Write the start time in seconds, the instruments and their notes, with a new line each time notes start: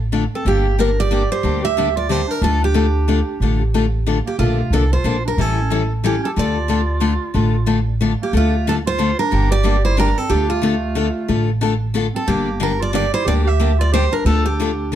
Already playing: upright bass A1
0.12 steel-string acoustic guitar D3 A3 D4 F4 A4
0.35 clarinet C4, steel-string acoustic guitar A4
0.45 upright bass G1, steel-string acoustic guitar D3 G3 A#3 D4 G4, clarinet A#3
0.78 steel-string acoustic guitar D3 G3 A#3 D4 G4 A#4, clarinet D4
0.99 clarinet G4, steel-string acoustic guitar D5
1.11 steel-string acoustic guitar D3 G3 A#3 D4 G4
1.31 clarinet G4, steel-string acoustic guitar C5
1.43 upright bass D2, steel-string acoustic guitar D3 G3 A#3 D4 G4
1.62 clarinet G4, steel-string acoustic guitar E5
1.77 steel-string acoustic guitar D3 G3 A#3 D4 G4
1.96 clarinet F4, steel-string acoustic guitar D5
2.09 steel-string acoustic guitar D3 G3 A#3 D4 G4 C5, clarinet G4
2.28 clarinet D4, steel-string acoustic guitar A#4
2.41 upright bass D2, steel-string acoustic guitar D3 A3 D4 F4 A4, clarinet D4
2.62 clarinet D4, steel-string acoustic guitar G4
2.74 steel-string acoustic guitar D3 A3 D4 F4 A4
3.08 steel-string acoustic guitar D3 A3 D4 F4 A4
3.40 upright bass A1, steel-string acoustic guitar D3 A3 D4 F4 A4
3.74 steel-string acoustic guitar D3 A3 D4 F4 A4
4.06 steel-string acoustic guitar D3 A3 D4 F4 A4
4.25 clarinet A#3, steel-string acoustic guitar G4
4.39 upright bass A#1, steel-string acoustic guitar D3 F3 A#3 D4 F4 A4, clarinet A3
4.70 upright bass C2, steel-string acoustic guitar D3 F3 A#3 D4 A4, clarinet D4
4.93 clarinet F4, steel-string acoustic guitar C5
5.04 upright bass A#1, steel-string acoustic guitar D3 F3 A#3 D4 A4
5.25 clarinet D4, steel-string acoustic guitar A#4
5.37 upright bass A1, steel-string acoustic guitar E3 G3 C#4 E4 A4, clarinet C#4
5.70 steel-string acoustic guitar E3 G3 C#4 E4 A4
6.03 steel-string acoustic guitar E3 G3 C#4 E4 G4 A4, clarinet C#4
6.23 clarinet C#4, steel-string acoustic guitar A4
6.36 upright bass D2, steel-string acoustic guitar D3 A3 D4 F4 A4 D5, clarinet F4
6.68 steel-string acoustic guitar D3 A3 D4 F4 A4
7.00 steel-string acoustic guitar D3 A3 D4 F4 A4
7.34 upright bass A1, steel-string acoustic guitar D3 A3 D4 F4 A4
7.66 steel-string acoustic guitar D3 A3 D4 F4 A4
8.01 steel-string acoustic guitar D3 A3 D4 F4 A4
8.22 clarinet A#3, steel-string acoustic guitar G4
8.33 upright bass D2, steel-string acoustic guitar D3 A3 D4 F4 A4, clarinet A3
8.67 steel-string acoustic guitar D3 A3 D4 F4 A4, clarinet D4
8.86 clarinet F4, steel-string acoustic guitar C5
8.98 steel-string acoustic guitar D3 A3 D4 F4 A4
9.19 clarinet D4, steel-string acoustic guitar A#4
9.31 upright bass G1, steel-string acoustic guitar D3 G3 A#3 D4 G4
9.51 clarinet G4, steel-string acoustic guitar D5
9.63 steel-string acoustic guitar D3 G3 A#3 D4 G4
9.85 clarinet E4, steel-string acoustic guitar C5
9.97 steel-string acoustic guitar D3 G3 A#3 D4 G4 A#4, clarinet D4
10.18 clarinet C4, steel-string acoustic guitar A4
10.29 upright bass D2, steel-string acoustic guitar D3 A3 D4 F4 G4 A4, clarinet D4
10.50 clarinet A3, steel-string acoustic guitar F4
10.62 steel-string acoustic guitar D3 A3 D4 F4 A4
10.95 steel-string acoustic guitar D3 A3 D4 F4 A4
11.28 upright bass A1, steel-string acoustic guitar D3 A3 D4 F4 A4
11.61 steel-string acoustic guitar D3 A3 D4 F4 A4
11.94 steel-string acoustic guitar D3 A3 D4 F4 A4
12.14 clarinet C4, steel-string acoustic guitar A4
12.27 upright bass G1, steel-string acoustic guitar D3 G3 A#3 D4 G4, clarinet A#3
12.60 steel-string acoustic guitar D3 G3 A#3 D4 G4 A#4, clarinet D4
12.79 clarinet F4, steel-string acoustic guitar D5
12.93 steel-string acoustic guitar D3 G3 A#3 D4 G4 D5, clarinet G4
13.14 clarinet E4, steel-string acoustic guitar C5
13.25 upright bass D2, steel-string acoustic guitar D3 G3 A#3 D4 G4 D5, clarinet G4
13.44 clarinet G4, steel-string acoustic guitar E5
13.60 steel-string acoustic guitar D3 G3 A#3 D4 G4
13.79 clarinet F4, steel-string acoustic guitar D5
13.92 steel-string acoustic guitar D3 G3 A#3 D4 G4 C5, clarinet G4
14.12 clarinet D4, steel-string acoustic guitar A#4
14.25 upright bass D2, steel-string acoustic guitar D3 A3 D4 F4 A4, clarinet D4
14.46 clarinet D4, steel-string acoustic guitar G4
14.60 steel-string acoustic guitar D3 A3 D4 F4 A4
14.92 steel-string acoustic guitar D3